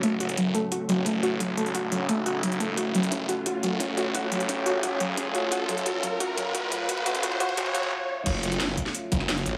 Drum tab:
CC |----------------|----------------|----------------|----------------|
HH |x-xxx-x-x-x-x-x-|x-xxx-x-x-x-xxx-|x-xxx-x-x-x-x-x-|x-xxx-x-x-x-x-x-|
SD |----------------|----------------|----------------|----------------|
BD |o---o---o---o---|o---o---o---o---|o---o---o---o---|o---o---o---o---|

CC |----------------|----------------|x---------------|
HH |x-xxx-x-x-x-x-x-|x-xxx-x-x-x-----|x-xxx-x-x-x-xxx-|
SD |----------------|----------------|----o--o---oo---|
BD |o-o-o-o-o-o-o-o-|oooooooooooo----|o-----o---o-----|